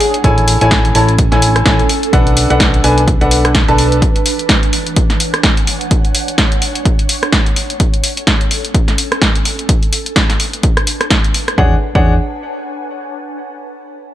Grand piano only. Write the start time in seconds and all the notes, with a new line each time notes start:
0.24 E4 A4 C#5 G#5
0.61 E4 A4 C#5 G#5
0.95 E4 A4 C#5 A5
1.32 E4 A4 C#5 G#5
1.66 E4 A4 C#5 G#5
2.13 D4 A4 B4 F#5
2.50 D4 A4 B4 F#5
2.84 D4 A4 B4 G#5
3.21 D4 A4 B4 F#5
3.68 D4 A4 B4 A5
11.58 D4 G#4 C#5 F#5
11.95 D4 G#4 C#5 F#5